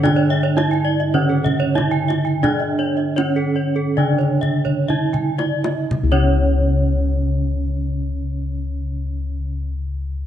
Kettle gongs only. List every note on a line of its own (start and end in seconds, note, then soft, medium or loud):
0.00 0.53 D3 medium
0.00 0.56 D4 medium
0.57 0.65 D4 soft
1.14 3.13 D3 medium
1.76 1.84 D4 medium
2.43 3.15 D4 medium
3.16 3.24 D4 soft
3.97 6.98 C#3 medium
4.89 4.97 D4 soft
6.03 9.58 C#2 loud